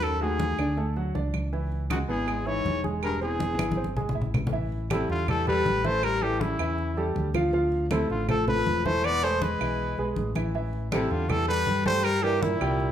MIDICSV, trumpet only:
0, 0, Header, 1, 2, 480
1, 0, Start_track
1, 0, Tempo, 375704
1, 31, Time_signature, 4, 2, 24, 8
1, 16503, End_track
2, 0, Start_track
2, 0, Title_t, "Trumpet"
2, 0, Program_c, 0, 56
2, 41, Note_on_c, 0, 69, 98
2, 276, Note_off_c, 0, 69, 0
2, 286, Note_on_c, 0, 68, 93
2, 1186, Note_off_c, 0, 68, 0
2, 2438, Note_on_c, 0, 66, 79
2, 2544, Note_off_c, 0, 66, 0
2, 2674, Note_on_c, 0, 68, 91
2, 3152, Note_on_c, 0, 73, 104
2, 3171, Note_off_c, 0, 68, 0
2, 3630, Note_off_c, 0, 73, 0
2, 3877, Note_on_c, 0, 70, 89
2, 4096, Note_off_c, 0, 70, 0
2, 4122, Note_on_c, 0, 68, 87
2, 5024, Note_off_c, 0, 68, 0
2, 6280, Note_on_c, 0, 64, 77
2, 6498, Note_off_c, 0, 64, 0
2, 6516, Note_on_c, 0, 65, 94
2, 6736, Note_off_c, 0, 65, 0
2, 6760, Note_on_c, 0, 69, 94
2, 6978, Note_off_c, 0, 69, 0
2, 6996, Note_on_c, 0, 71, 102
2, 7484, Note_on_c, 0, 72, 106
2, 7503, Note_off_c, 0, 71, 0
2, 7718, Note_on_c, 0, 70, 111
2, 7737, Note_off_c, 0, 72, 0
2, 7952, Note_on_c, 0, 67, 97
2, 7971, Note_off_c, 0, 70, 0
2, 8184, Note_on_c, 0, 64, 79
2, 8203, Note_off_c, 0, 67, 0
2, 9147, Note_off_c, 0, 64, 0
2, 10112, Note_on_c, 0, 64, 79
2, 10335, Note_off_c, 0, 64, 0
2, 10360, Note_on_c, 0, 65, 86
2, 10579, Note_off_c, 0, 65, 0
2, 10601, Note_on_c, 0, 69, 97
2, 10820, Note_off_c, 0, 69, 0
2, 10835, Note_on_c, 0, 71, 103
2, 11315, Note_on_c, 0, 72, 103
2, 11334, Note_off_c, 0, 71, 0
2, 11563, Note_on_c, 0, 74, 110
2, 11582, Note_off_c, 0, 72, 0
2, 11800, Note_on_c, 0, 72, 98
2, 11819, Note_off_c, 0, 74, 0
2, 12041, Note_on_c, 0, 71, 87
2, 12060, Note_off_c, 0, 72, 0
2, 12997, Note_off_c, 0, 71, 0
2, 13962, Note_on_c, 0, 64, 77
2, 14201, Note_on_c, 0, 65, 84
2, 14221, Note_off_c, 0, 64, 0
2, 14435, Note_on_c, 0, 69, 96
2, 14454, Note_off_c, 0, 65, 0
2, 14665, Note_off_c, 0, 69, 0
2, 14672, Note_on_c, 0, 71, 106
2, 15120, Note_off_c, 0, 71, 0
2, 15154, Note_on_c, 0, 72, 106
2, 15381, Note_on_c, 0, 70, 115
2, 15400, Note_off_c, 0, 72, 0
2, 15626, Note_on_c, 0, 67, 98
2, 15645, Note_off_c, 0, 70, 0
2, 15870, Note_on_c, 0, 64, 82
2, 15889, Note_off_c, 0, 67, 0
2, 16503, Note_off_c, 0, 64, 0
2, 16503, End_track
0, 0, End_of_file